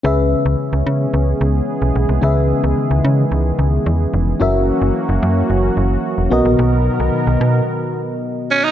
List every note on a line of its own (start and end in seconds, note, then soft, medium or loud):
0.03 0.35 C#2 loud
0.03 0.82 C#3 medium
0.03 6.28 E3 medium
0.03 4.37 G#3 medium
0.03 4.37 B3 medium
0.03 2.18 C#4 medium
0.03 2.20 C#4 medium
0.03 2.19 G#4 medium
0.03 4.37 G#4 medium
0.03 2.19 B4 medium
0.03 2.19 E5 medium
0.46 0.56 C#2 medium
0.73 0.83 C#2 medium
0.87 1.07 C#3 medium
1.14 1.34 C#2 medium
1.41 1.61 C#2 medium
1.82 1.92 B1 medium
1.96 2.06 B1 medium
2.09 2.19 C2 medium
2.22 2.53 C#2 medium
2.22 3.01 C#3 medium
2.22 4.39 D#3 medium
2.22 4.36 C#4 medium
2.22 4.37 G#4 medium
2.22 4.37 B4 medium
2.22 4.38 E5 medium
2.64 2.74 C#2 medium
2.91 3.01 C#2 medium
3.04 3.25 C#3 medium
3.32 3.52 C#2 medium
3.59 3.79 C#2 medium
3.86 4.07 E2 medium
4.14 4.34 F1 medium
4.40 4.72 F#1 loud
4.40 8.71 F#3 medium
4.40 6.30 A#3 medium
4.40 6.27 C#4 medium
4.40 6.30 C#4 medium
4.40 6.28 F#4 medium
4.40 8.71 F#4 medium
4.40 6.28 A#4 medium
4.40 6.29 E5 medium
4.82 4.92 F#1 medium
5.09 5.19 F#1 medium
5.23 5.43 F#2 medium
5.50 5.70 F#1 medium
5.77 5.98 F#1 medium
6.18 6.28 E1 medium
6.30 6.42 B1 medium
6.30 7.10 B2 medium
6.30 8.71 D#3 medium
6.30 8.45 B3 medium
6.30 8.71 B3 medium
6.30 8.46 F#4 medium
6.30 8.71 A#4 medium
6.30 8.46 A#4 medium
6.30 8.47 D#5 medium
6.45 6.56 A#1 medium
6.59 6.90 B1 loud
7.00 7.10 B1 medium
7.27 7.37 B1 medium
7.41 7.61 B2 medium
8.51 8.66 C#4 medium
8.64 8.71 D#4 medium